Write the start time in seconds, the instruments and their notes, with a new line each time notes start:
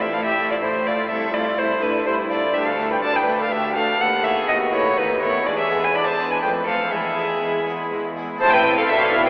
Already playing: viola section A3, harpsichord A3 E4 A4, violin section E4
0.00 violin section G4, violin E5
0.12 cello section A2, harpsichord A2, viola section A3, violin section E4 A4, violin F5
0.25 violin section G4, violin E5
0.37 viola section A3, harpsichord A3 E4 A4, violin section E4
0.49 violin section F4, violin D5
0.61 cello section A2, harpsichord A2, viola section A3, violin section E4, violin C5
0.85 viola section A3, harpsichord A3 E4 A4, violin section E4 F4, violin D5
1.09 cello section C2, harpsichord C2, viola section A3, violin section E4 A4, violin E5
1.34 viola section A3, harpsichord A3 E4 A4, violin section E4 F4, violin D5
1.57 cello section C2, harpsichord C2, viola section A3, violin section E4, violin C5
1.82 harpsichord A3 E4 A4, viola section A3, violin section D4 E4, violin B4
2.05 harpsichord C2, cello section C2, viola section A3, violin section E4, violin C5
2.29 viola section A3, harpsichord A3 E4 A4, violin section E4 F4, violin D5
2.53 cello section D2, harpsichord D2, viola section A3, violin section D4 G4, violin E5
2.66 violin section A4, violin F5
2.78 viola section A3, harpsichord A3 D4 A4, violin section D4
2.91 violin section B4, violin G5
3.03 cello section D2, harpsichord D2, viola section A3, violin section D4 D5, violin A5
3.15 violin section B4, violin G5
3.27 viola section A3, harpsichord A3 D4 A4, violin section D4
3.40 violin section A4, violin F5
3.51 harpsichord D2, cello section D2, viola section A3, violin section D4 G4, violin E5
3.75 viola section A3, harpsichord A3 D4 A4, violin section D4 A4, violin F5
3.99 harpsichord D#2, cello section D#2, viola section A3, violin section B3 A4, violin F#5
4.24 viola section A3, harpsichord B3 F#4 A4, violin section B3 G#4, violin E5
4.48 harpsichord D#2, cello section D#2, viola section A3, violin section B3 F#4, violin D#5
4.73 viola section A3, harpsichord B3 F#4 A4, violin section B3 E4, violin C#5
4.97 harpsichord D#2, cello section D#2, viola section A3, violin section B3 D#4, violin B4
5.21 viola section A3, violin section B3 E4, harpsichord B3 F#4 A4, violin C#5
5.45 harpsichord E2, cello section E2, viola section G#3, violin section D4 G#4, violin D5
5.58 violin section G#4, violin E5
5.70 viola section G#3, harpsichord B3 D4 G#4, violin section D4
5.82 violin section B4, violin G#5
5.94 cello section E2, harpsichord E2, viola section G#3, violin section D4 D5, violin B5
6.06 violin section C5, violin A5
6.19 viola section G#3, harpsichord B3 D4 G#4, violin section D4
6.29 violin section B4, violin G#5
6.42 harpsichord F2, cello section F2, viola section A3, violin section C4 B4, violin G5
6.67 viola section A3, harpsichord A3 C4 A4, violin section C4 A4, violin F5
6.91 cello section E2, harpsichord E2, viola section G#3, violin section E4 G#4, violin E5
7.17 viola section G#3, harpsichord B3 E4 G#4, violin section E4
7.41 cello section E2, harpsichord E2, viola section G#3, violin section E4
7.66 viola section G#3, harpsichord B3 E4 G#4, violin section E4
7.91 cello section E2, harpsichord E2, viola section G#3, violin section E4
8.16 viola section G#3, harpsichord B3 E4 G#4, violin section E4
8.37 double bass section A1, cello section A2, harpsichord C4 E4 A4, violin section E4 A5, violin C5
8.41 harpsichord A2, viola section C4
8.51 violin B4, violin section G5
8.77 violin A4, violin section F5
8.89 double bass section B1, cello section B2, harpsichord B2, viola section D4, violin section E4 E5, violin A4
9.00 violin A4, violin section F5
9.25 violin B4, violin section G5